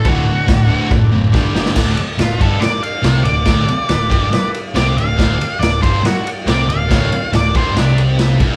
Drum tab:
CC |x---x---x-------|x---------------|----------------|----------------|
RD |----------------|--x-x-x-x-x-x-x-|x-x-x-x-x-x-x-x-|x-x-x-x-x-x-x-x-|
SD |----o-------o-oo|o---o---o---o---|o---o---o---o---|o---o---o---o---|
BD |o---o---o---o---|o-----o---------|o-----o---------|o-----o---------|

CC |----------------|
RD |x-x-x-x-x-x-x-x-|
SD |o---o---o---o---|
BD |o-----o-------o-|